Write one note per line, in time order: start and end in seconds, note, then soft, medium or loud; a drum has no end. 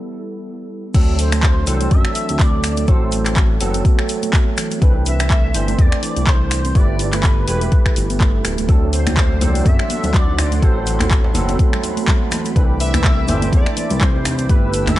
0.00 0.92 G3 medium
0.00 0.92 B3 medium
0.00 0.92 E4 medium
0.00 0.92 A4 medium
0.94 1.65 D2 loud
0.94 1.65 F#3 medium
0.94 1.02 A3 loud
0.94 1.65 C4 medium
0.94 1.65 D4 medium
0.94 1.65 A4 medium
0.94 kick loud
0.94 closed hi-hat soft
0.94 crash loud
0.94 shaker soft
1.19 1.93 C5 loud
1.19 open hi-hat medium
1.19 shaker loud
1.32 1.42 A3 loud
1.32 finger snap medium
1.32 closed hi-hat medium
1.32 shaker medium
1.43 kick loud
1.43 clap loud
1.43 closed hi-hat soft
1.43 shaker soft
1.67 1.88 C2 loud
1.67 1.75 E3 medium
1.67 2.86 F#3 medium
1.67 2.86 C4 medium
1.67 2.86 D4 medium
1.67 2.86 A4 medium
1.67 open hi-hat medium
1.67 shaker medium
1.81 1.87 A3 medium
1.81 closed hi-hat medium
1.81 shaker soft
1.91 2.03 F#2 loud
1.91 2.41 E5 loud
1.91 kick loud
1.91 closed hi-hat soft
1.91 shaker soft
2.05 finger snap medium
2.15 open hi-hat medium
2.15 shaker loud
2.29 2.86 D2 medium
2.29 2.39 C4 medium
2.29 closed hi-hat medium
2.29 shaker medium
2.39 2.47 A3 loud
2.39 2.90 D5 loud
2.39 kick loud
2.39 clap medium
2.39 closed hi-hat soft
2.39 shaker soft
2.63 finger snap loud
2.63 open hi-hat medium
2.63 shaker medium
2.77 2.87 A3 loud
2.77 closed hi-hat medium
2.77 shaker medium
2.87 3.58 A1 loud
2.87 3.58 F#3 medium
2.87 3.58 A3 medium
2.87 3.58 C4 medium
2.87 3.58 A4 medium
2.87 3.37 C5 medium
2.87 kick loud
2.87 closed hi-hat soft
2.87 shaker soft
3.12 3.20 E3 medium
3.12 open hi-hat medium
3.12 shaker loud
3.25 3.32 A3 medium
3.25 finger snap loud
3.25 clap soft
3.25 closed hi-hat medium
3.25 shaker medium
3.36 kick loud
3.36 clap loud
3.36 closed hi-hat soft
3.36 shaker soft
3.61 3.82 F#1 loud
3.61 4.79 F#3 medium
3.61 4.79 B3 medium
3.61 4.79 C4 medium
3.61 4.79 A4 loud
3.61 open hi-hat loud
3.61 shaker loud
3.74 3.85 C4 medium
3.74 closed hi-hat medium
3.74 shaker medium
3.85 3.92 A3 loud
3.85 kick loud
3.85 closed hi-hat soft
3.85 shaker soft
3.99 finger snap medium
4.09 open hi-hat medium
4.09 shaker medium
4.22 4.32 A3 loud
4.22 closed hi-hat medium
4.22 shaker medium
4.33 kick loud
4.33 clap medium
4.33 closed hi-hat soft
4.33 shaker soft
4.57 4.65 E3 medium
4.57 finger snap loud
4.57 open hi-hat loud
4.57 shaker medium
4.71 4.77 A3 medium
4.71 closed hi-hat medium
4.71 shaker medium
4.82 5.52 C2 loud
4.82 5.52 E3 medium
4.82 5.52 C4 medium
4.82 5.52 D4 medium
4.82 5.52 B4 loud
4.82 kick loud
4.82 closed hi-hat soft
4.82 shaker soft
5.06 5.81 E5 loud
5.06 open hi-hat medium
5.06 shaker loud
5.19 5.29 C4 medium
5.19 finger snap loud
5.19 closed hi-hat medium
5.19 shaker medium
5.30 5.38 A3 loud
5.30 kick loud
5.30 clap loud
5.30 closed hi-hat soft
5.30 shaker soft
5.54 5.75 G1 loud
5.54 6.73 E3 medium
5.54 6.73 C4 medium
5.54 6.73 D4 medium
5.54 6.73 C5 medium
5.54 open hi-hat loud
5.54 shaker medium
5.68 5.78 A3 loud
5.68 closed hi-hat medium
5.68 shaker medium
5.78 5.90 E2 loud
5.78 6.30 D5 loud
5.78 kick loud
5.78 closed hi-hat soft
5.78 shaker soft
5.92 finger snap medium
6.03 6.10 E3 medium
6.03 open hi-hat medium
6.03 shaker medium
6.17 6.73 C2 medium
6.17 6.22 A3 medium
6.17 closed hi-hat medium
6.17 shaker medium
6.27 6.78 C5 loud
6.27 kick loud
6.27 clap medium
6.27 closed hi-hat soft
6.27 shaker soft
6.51 finger snap loud
6.51 open hi-hat medium
6.51 shaker loud
6.65 6.75 C4 medium
6.65 closed hi-hat medium
6.65 shaker medium
6.75 7.45 G1 loud
6.75 7.45 A3 medium
6.75 6.83 A3 loud
6.75 7.45 E4 medium
6.75 7.45 G4 medium
6.75 7.45 B4 medium
6.75 7.14 D5 loud
6.75 kick loud
6.75 closed hi-hat soft
6.75 shaker soft
6.99 open hi-hat medium
6.99 shaker medium
7.12 7.23 A3 loud
7.12 7.46 B4 medium
7.12 finger snap medium
7.12 clap soft
7.12 closed hi-hat medium
7.12 shaker medium
7.23 kick loud
7.23 clap loud
7.23 closed hi-hat soft
7.23 shaker soft
7.48 7.69 E1 loud
7.48 7.55 E3 medium
7.48 8.66 A3 medium
7.48 8.66 E4 medium
7.48 8.66 G4 medium
7.48 8.66 B4 medium
7.48 7.93 B4 medium
7.48 open hi-hat medium
7.48 shaker medium
7.61 7.67 A3 medium
7.61 closed hi-hat medium
7.61 shaker medium
7.72 kick loud
7.72 closed hi-hat soft
7.72 shaker soft
7.86 finger snap medium
7.86 kick medium
7.96 8.42 G1 medium
7.96 open hi-hat medium
7.96 shaker loud
8.10 8.20 B3 medium
8.10 closed hi-hat medium
8.10 shaker medium
8.20 8.28 A3 loud
8.20 kick loud
8.20 clap medium
8.20 closed hi-hat soft
8.20 shaker soft
8.45 8.56 D1 medium
8.45 finger snap loud
8.45 open hi-hat medium
8.45 shaker medium
8.58 8.67 D1 medium
8.58 8.67 A3 loud
8.58 closed hi-hat medium
8.58 shaker medium
8.69 9.39 D2 loud
8.69 9.39 F#3 medium
8.69 8.76 A3 loud
8.69 9.39 C4 medium
8.69 9.39 D4 medium
8.69 12.52 A4 medium
8.69 9.39 A4 medium
8.69 10.60 D5 medium
8.69 12.52 F#5 medium
8.69 12.52 C6 medium
8.69 kick loud
8.69 closed hi-hat soft
8.69 shaker soft
8.93 9.67 C5 loud
8.93 open hi-hat medium
8.93 shaker loud
9.06 9.16 A3 loud
9.06 finger snap medium
9.06 closed hi-hat medium
9.06 high conga medium
9.06 djembe bass medium
9.06 shaker soft
9.17 kick loud
9.17 clap loud
9.17 closed hi-hat soft
9.17 shaker soft
9.41 9.62 C2 medium
9.41 9.49 E3 medium
9.41 10.60 F#3 medium
9.41 10.60 C4 medium
9.41 10.60 D4 medium
9.41 10.60 A4 medium
9.41 open hi-hat medium
9.41 djembe tone medium
9.41 high conga loud
9.41 djembe bass medium
9.41 shaker medium
9.55 9.61 A3 medium
9.55 closed hi-hat medium
9.55 shaker soft
9.66 9.77 F#2 loud
9.66 10.15 E5 loud
9.66 kick loud
9.66 closed hi-hat soft
9.66 high conga medium
9.66 shaker soft
9.79 finger snap medium
9.90 open hi-hat medium
9.90 high conga medium
9.90 shaker medium
10.03 10.60 D2 medium
10.03 10.14 C4 medium
10.03 closed hi-hat medium
10.03 low conga loud
10.03 shaker medium
10.13 10.21 A3 loud
10.13 10.64 D5 loud
10.13 kick loud
10.13 clap medium
10.13 closed hi-hat soft
10.13 low conga loud
10.13 shaker soft
10.27 djembe tone medium
10.39 finger snap medium
10.39 open hi-hat medium
10.39 djembe slap loud
10.39 djembe tone medium
10.39 shaker loud
10.52 10.61 A3 loud
10.52 closed hi-hat medium
10.52 shaker medium
10.62 11.32 A1 loud
10.62 11.32 F#3 medium
10.62 11.33 A3 medium
10.62 11.32 C4 medium
10.62 11.33 A4 medium
10.62 11.11 C5 medium
10.62 14.99 B5 medium
10.62 kick loud
10.62 closed hi-hat soft
10.62 shaker soft
10.86 10.94 E3 medium
10.86 open hi-hat medium
10.86 shaker medium
11.00 11.06 A3 medium
11.00 finger snap medium
11.00 clap soft
11.00 closed hi-hat medium
11.00 high conga loud
11.00 djembe bass medium
11.00 shaker soft
11.11 kick loud
11.11 clap loud
11.11 closed hi-hat soft
11.11 shaker soft
11.24 djembe slap loud
11.34 11.56 F#1 loud
11.34 12.54 F#3 medium
11.34 12.53 B3 medium
11.34 12.53 C4 medium
11.34 12.54 A4 medium
11.34 open hi-hat medium
11.34 djembe tone medium
11.34 high conga loud
11.34 djembe bass medium
11.34 shaker medium
11.48 11.59 C4 medium
11.48 closed hi-hat medium
11.48 djembe slap medium
11.48 shaker soft
11.59 11.67 A3 loud
11.59 kick loud
11.59 closed hi-hat soft
11.59 high conga medium
11.59 shaker soft
11.73 finger snap medium
11.73 low conga medium
11.83 open hi-hat medium
11.83 djembe slap medium
11.83 djembe tone medium
11.83 shaker medium
11.97 12.06 A3 loud
11.97 closed hi-hat medium
11.97 shaker soft
12.07 kick loud
12.07 clap loud
12.07 closed hi-hat soft
12.07 djembe tone medium
12.07 low conga loud
12.07 shaker soft
12.21 high conga medium
12.31 12.39 E3 medium
12.31 finger snap medium
12.31 open hi-hat medium
12.31 djembe slap medium
12.31 high conga medium
12.31 shaker medium
12.45 12.51 A3 medium
12.45 closed hi-hat medium
12.45 shaker medium
12.55 13.26 C2 loud
12.55 13.26 E3 medium
12.55 14.47 C4 medium
12.55 13.26 C4 medium
12.55 13.26 D4 medium
12.55 13.26 B4 loud
12.55 14.47 E5 medium
12.55 14.47 D6 medium
12.55 kick loud
12.55 closed hi-hat soft
12.55 shaker soft
12.80 13.49 E5 loud
12.80 open hi-hat medium
12.80 shaker medium
12.94 13.04 C4 medium
12.94 finger snap medium
12.94 closed hi-hat medium
12.94 high conga medium
12.94 djembe bass loud
12.94 shaker soft
13.04 13.12 A3 loud
13.04 kick loud
13.04 clap loud
13.04 closed hi-hat soft
13.28 13.50 G1 loud
13.28 14.47 E3 medium
13.28 14.47 C4 medium
13.28 14.47 D4 medium
13.28 14.47 C5 medium
13.28 open hi-hat medium
13.28 high conga loud
13.28 djembe tone loud
13.28 djembe bass loud
13.28 shaker medium
13.42 13.52 A3 loud
13.42 closed hi-hat medium
13.42 shaker soft
13.53 13.64 E2 loud
13.53 14.03 D5 loud
13.53 kick loud
13.53 closed hi-hat soft
13.53 high conga medium
13.53 shaker soft
13.66 finger snap medium
13.77 13.84 E3 medium
13.77 open hi-hat medium
13.77 high conga medium
13.77 shaker medium
13.90 14.47 C2 medium
13.90 13.96 A3 medium
13.90 closed hi-hat medium
13.90 low conga loud
13.90 shaker medium
14.01 14.51 C5 loud
14.01 kick loud
14.01 clap loud
14.01 closed hi-hat soft
14.01 low conga loud
14.01 shaker soft
14.16 djembe tone medium
14.25 finger snap medium
14.25 open hi-hat medium
14.25 djembe slap loud
14.25 djembe tone medium
14.25 shaker medium
14.38 14.49 C4 medium
14.38 closed hi-hat medium
14.38 shaker soft
14.49 14.99 G1 loud
14.49 14.99 A3 medium
14.49 14.57 A3 loud
14.49 14.99 E4 medium
14.49 14.99 G4 medium
14.49 14.99 A4 medium
14.49 14.89 B4 loud
14.49 14.99 B4 loud
14.49 14.99 G5 medium
14.49 14.99 E6 medium
14.49 kick loud
14.49 closed hi-hat soft
14.49 djembe tone medium
14.49 shaker soft
14.73 open hi-hat medium
14.73 shaker medium
14.87 14.97 A3 loud
14.87 14.99 E5 loud
14.87 finger snap medium
14.87 clap soft
14.87 closed hi-hat medium
14.87 high conga medium
14.87 djembe bass loud
14.87 shaker soft